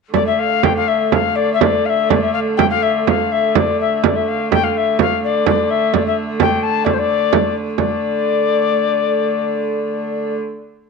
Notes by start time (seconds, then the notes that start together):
0.14 D3 A3 D5, frame drum
0.26 E5
0.39 F5
0.63 G5, frame drum
0.76 F5
0.88 E5, frame drum
1.12 F5, frame drum
1.35 D5
1.53 E5
1.61 D5, frame drum
1.85 E5 F5, frame drum
2.09 D5, frame drum
2.22 E5
2.33 F5
2.57 G5, frame drum
2.70 F5
2.82 E5, frame drum
3.07 F5, frame drum
3.32 E5
3.55 D5, frame drum
3.80 E5, frame drum
4.03 D3 A3 D5, frame drum
4.16 E5
4.28 F5
4.52 G5, frame drum
4.63 F5
4.77 E5
4.99 F5, frame drum
5.24 D5
5.46 D5, frame drum
5.70 E5, frame drum
5.93 D5, frame drum
6.06 E5
6.40 G5, frame drum
6.63 A5, frame drum
6.84 D5, frame drum
6.93 C5
6.99 D5
7.33 frame drum
7.78 D3 A3 D5, frame drum